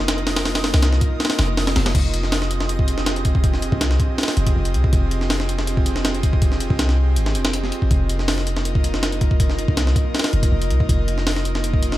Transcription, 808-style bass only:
Already playing: F1
0.74 C2
1.39 F1
1.76 F1
1.95 F1
3.72 C2
4.37 F1
4.56 F1
4.75 C2
4.93 F1
6.70 C2
7.17 G#1
7.35 F1
7.91 F1
9.68 C2
10.33 F1
10.52 F1
10.71 C2
10.89 F1

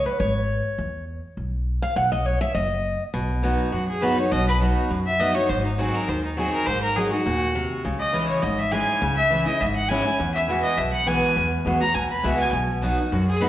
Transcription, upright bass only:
0.20 G#1
0.78 E2
1.37 B1
1.96 B1
2.55 F#1
3.14 B1
3.73 F#2
4.32 B1
4.90 F#2
5.49 G#1
6.09 D#2
6.67 G#1
7.26 D#2
7.85 C#2
8.43 G#1
9.02 C#2
9.61 G#1
10.19 E2
10.78 B1
11.36 E2
11.65 E2
11.95 D#2
12.24 C#2
12.53 B1
13.12 F#2

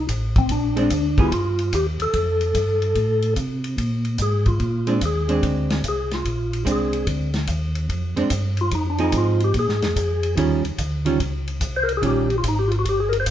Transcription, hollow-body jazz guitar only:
0.76 G#3 C4 D4
1.18 G3 B3 F4 G#4
4.87 G#3 C4 D4
5.28 G#3 C4 D4
6.65 G#3 C4 D4
8.16 G#3 C4 D4
8.99 F3 C4 D#4 G#4
10.37 D#3 G3 C#4 F4
11.05 D#3 G3 C#4 F4
12.02 D#3 G3 C#4 F4

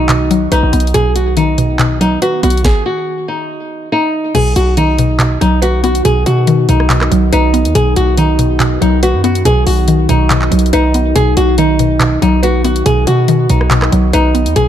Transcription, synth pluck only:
Already playing: D#3
0.09 B2
0.31 F#3
0.52 B4
0.73 B3
0.95 B2
1.37 D#3
1.58 B2
1.79 B2
2.01 F#3
2.22 B4
2.43 B3
4.35 B2
4.77 D#3
4.99 B2
5.19 B2
5.41 F#3
5.62 B4
5.84 B3
6.05 B2
6.48 D#3
6.69 B2
6.90 B2
7.11 F#3
7.33 B4
7.54 B3
7.76 B2
8.18 D#3
8.39 B2
8.60 B2
8.82 F#3
9.03 B4
9.24 B3
9.45 B2
9.88 D#3
10.09 B2
10.31 B2
10.51 F#3
10.73 B4
10.95 B3
11.16 B2
11.58 D#3
11.80 B2
12.00 B2
12.22 F#3
12.43 B4
12.64 B3
12.86 B2
13.28 D#3
13.50 B2
13.71 B2
13.92 F#3
14.13 B4
14.35 B3
14.56 B2

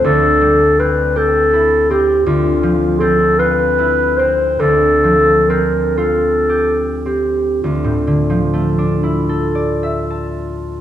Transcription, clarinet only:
0.06 A4
0.79 B4
1.17 A4
1.90 G4
2.26 F4
2.99 A4
3.39 B4
4.17 C5
4.60 A4
5.49 A#4
5.97 A4
7.05 G4
7.62 F4

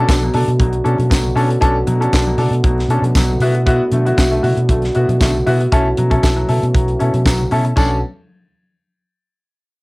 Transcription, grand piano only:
0.08 D4 A4
0.23 B2 F#3
0.34 D4 A4
0.59 B2 F#3
0.84 C#4 D4 A4
0.97 D4 A4
1.10 B2 F#3
1.35 C#4 D4 A4
1.49 D4 A4
1.61 C#4 D4 A4
1.87 B2 F#3
2.00 C#4 D4 A4
2.13 D4 A4
2.26 B2 F#3
2.38 D4 A4
2.64 B2 F#3
2.90 C#4 D4 A4
3.03 D4 A4
3.16 B2 F#3
3.41 B3 E4 F#4
3.55 E4 F#4
3.66 B3 E4 F#4
3.93 D3 A3
4.05 B3 E4 F#4
4.17 E4 F#4
4.31 D3 A3
4.43 E4 F#4
4.70 D3 A3
4.95 B3 E4 F#4
5.09 E4 F#4
5.21 D3 A3
5.46 B3 E4 F#4
5.61 E4 F#4
5.72 C#4 E4 A4
5.98 F#3
6.10 C#4 E4 A4
6.23 E4 A4
6.36 F#3
6.48 E4 A4
6.74 F#3
6.99 C#4 E4 A4
7.13 E4 A4
7.27 F#3
7.51 C#4 E4 A4
7.65 E4 A4
7.76 C#4 D4 A4

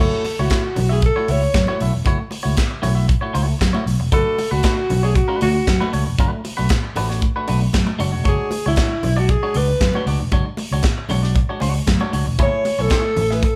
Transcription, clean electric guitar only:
0.00 A3 E4 F#4 C#5
0.26 muted clean electric guitar stroke
0.39 A3 E4 F#4 C#5
0.51 A3 E4 F#4 C#5
0.64 muted clean electric guitar stroke
0.76 muted clean electric guitar stroke
0.89 A3 E4 F#4 E5
1.02 muted clean electric guitar stroke
1.16 A3 E4 F#4 C#5
1.28 A3 E4 F#4 E5
1.43 muted clean electric guitar stroke
1.55 muted clean electric guitar stroke
1.68 A3 E4 F#4 C#5
1.81 A3 E4 F#4 E5
1.94 muted clean electric guitar stroke
2.06 A3 E4 F#4 C#5
2.19 muted clean electric guitar stroke
2.31 muted clean electric guitar stroke
2.43 A3 E4 F#4 C#5
2.56 muted clean electric guitar stroke
2.71 muted clean electric guitar stroke
2.82 A3 E4 F#4 C#5
2.95 A3 E4 F#4 E5
3.08 muted clean electric guitar stroke
3.21 A3 E4 F#4 C#5
3.33 A3 E4 F#4 C#5
3.47 muted clean electric guitar stroke
3.58 muted clean electric guitar stroke
3.73 A3 E4 F#4 C#5
3.85 muted clean electric guitar stroke
4.00 muted clean electric guitar stroke
4.12 A3 D4 F#4 B4
4.38 muted clean electric guitar stroke
4.51 A3 D4 F#4 B4
4.63 A3 D4 F#4 B4
4.78 muted clean electric guitar stroke
4.89 muted clean electric guitar stroke
5.03 A3 D4 F#4 C#5
5.16 muted clean electric guitar stroke
5.28 A3 D4 F#4 B4
5.41 A3 D4 F#4 C#5
5.55 muted clean electric guitar stroke
5.67 muted clean electric guitar stroke
5.80 A3 D4 F#4 B4
5.92 A3 D4 F#4 C#5
6.06 muted clean electric guitar stroke
6.19 A3 D4 F#4 B4
6.32 muted clean electric guitar stroke
6.44 muted clean electric guitar stroke
6.57 A3 D4 F#4 B4
6.70 muted clean electric guitar stroke
6.83 muted clean electric guitar stroke
6.96 A3 D4 F#4 B4
7.10 A3 D4 F#4 C#5
7.22 muted clean electric guitar stroke
7.36 A3 D4 F#4 B4
7.48 A3 D4 F#4 B4
7.61 muted clean electric guitar stroke
7.74 muted clean electric guitar stroke
7.87 muted clean electric guitar stroke
7.99 G#3 D4 F#4 C#5
8.12 G#3 D4 F#4 C#5
8.24 G#3 D4 F#4 C#5
8.51 muted clean electric guitar stroke
8.66 G#3 D4 F#4 C#5
8.77 G#3 D4 F#4 C#5
8.91 muted clean electric guitar stroke
9.03 muted clean electric guitar stroke
9.17 G#3 D4 F#4 D5
9.28 muted clean electric guitar stroke
9.43 G#3 D4 F#4 C#5
9.55 G#3 D4 F#4 D5
9.68 muted clean electric guitar stroke
9.82 muted clean electric guitar stroke
9.95 G#3 D4 F#4 C#5
10.06 G#3 D4 F#4 D5
10.20 muted clean electric guitar stroke
10.32 G#3 D4 F#4 C#5
10.46 muted clean electric guitar stroke
10.58 muted clean electric guitar stroke
10.73 G#3 D4 F#4 C#5
10.84 muted clean electric guitar stroke
10.98 muted clean electric guitar stroke
11.10 G#3 D4 F#4 C#5
11.23 G#3 D4 F#4 D5
11.35 muted clean electric guitar stroke
11.49 G#3 D4 F#4 C#5
11.61 G#3 D4 F#4 C#5
11.75 muted clean electric guitar stroke
11.87 muted clean electric guitar stroke
12.01 G#3 D4 F#4 C#5
12.12 G#3 D4 F#4 C#5
12.27 muted clean electric guitar stroke
12.39 A3 E4 G#4 C#5
12.65 muted clean electric guitar stroke
12.79 A3 E4 G#4 C#5
12.90 A3 E4 G#4 C#5
13.05 muted clean electric guitar stroke
13.17 muted clean electric guitar stroke
13.31 A3 E4 G#4 E5
13.44 muted clean electric guitar stroke

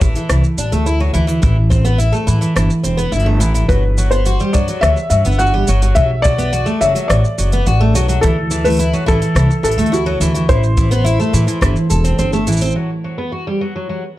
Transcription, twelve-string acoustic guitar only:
0.02 E3
0.16 E3
0.30 E3
0.58 D4
0.72 A3
0.86 E4
1.00 F#3
1.14 E3
1.27 E3
1.42 E3
1.70 C4
1.85 B3
1.98 E4
2.12 A3
2.27 E3
2.41 E3
2.56 E3
2.83 C4
2.97 B3
3.12 E4
3.26 A3
3.40 E3
3.54 E3
3.69 F#3
3.98 F#3
4.12 B3
4.26 F#4
4.40 G3
4.54 F#3
4.69 F#3
4.83 F#3
5.11 F#3
5.25 B3
5.39 F#4
5.54 G3
5.68 F#3
5.83 F#3
5.97 F#3
6.24 F#3
6.38 B3
6.53 F#4
6.66 A3
6.81 F#3
6.95 F#3
7.09 F#3
7.38 F#3
7.53 B3
7.67 F#4
7.81 A3
7.95 F#3
8.08 F#3
8.22 E3
8.51 E3
8.65 A3
8.79 E4
8.93 F#3
9.06 E3
9.22 E3
9.36 E3
9.63 E3
9.78 A3
9.92 E4
10.06 F#3
10.21 E3
10.34 E3
10.49 E3
10.77 E3
10.91 B3
11.05 E4
11.20 A3
11.33 E3
11.47 E3
11.61 E3
11.90 A4
12.04 C4
12.19 C4
12.33 A3
12.47 E3
12.62 C4
12.76 F#3
13.04 F#3
13.18 B3
13.32 F#4
13.47 G3
13.61 F#3
13.76 F#3
13.89 F#3

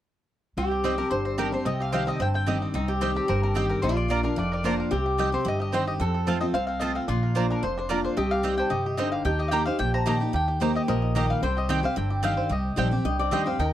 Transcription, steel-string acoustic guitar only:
0.57 C3
0.84 D#3 G3 C4 G4
0.98 C4 G4
1.11 G2
1.38 D#3 G3 C4 G4
1.53 C4 G4
1.66 C3
1.93 D#3 G3 C4 G4
2.20 G2
2.47 D#3 G3 C4 G4
2.74 C3
3.01 D#3 G3 C4 G4
3.28 G2
3.54 D#3 G3 C4 G4
3.82 A#2
4.08 F3 A#3 D4 F4
4.23 D4 F4
4.36 F2
4.63 F3 A#3 D4 F4
4.91 C3
5.18 D#3 G3 C4 G4
5.32 C4 G4
5.45 G2
5.72 D#3 G3 C4 G4
6.00 F2
6.26 F3 A3 C4 F4
6.41 C4 F4
6.55 C3
6.81 F3 A3 C4 F4
7.08 A#2
7.35 F3 A#3 D4 F4
7.63 F2
7.90 F3 A#3 D4 F4
8.17 C3
8.43 D#3 G3 C4 G4
8.70 C3
8.98 D3
9.25 D#3
9.52 D#3 A#3 D#4 G4
9.66 D#4 G4
9.79 A#2
10.06 D#3 A#3 D#4 G4
10.20 D#4 G4
10.33 D#3
10.60 D#3 A#3 D#4 G4
10.88 A#2
11.15 D#3 A#3 D#4 G4
11.43 C3
11.69 D#3 G3 C4 G4
11.83 C4 G4
11.96 G2
12.23 D#3 G3 C4 G4
12.50 C3
12.76 D#3 G3 C4 G4
12.91 C4 G4
13.05 G2
13.31 D#3 G3 C4 G4
13.46 C4 G4
13.60 D#3

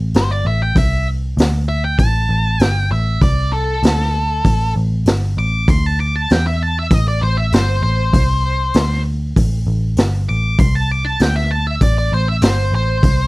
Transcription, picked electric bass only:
Already playing: A1
0.15 G1
0.45 A1
0.75 C2
1.37 D2
1.98 A1
2.29 A1
2.60 G1
2.91 A1
3.21 C2
3.83 D2
4.45 A1
4.76 A1
5.06 G1
5.37 A1
5.68 D2
6.31 E2
6.91 A1
7.22 A1
7.53 G1
7.83 A1
8.13 C2
8.75 D2
9.36 A1
9.67 A1
9.97 G1
10.29 A1
10.59 C2
11.20 D2
11.81 A1
12.12 A1
12.42 G1
12.72 A1
13.03 C2

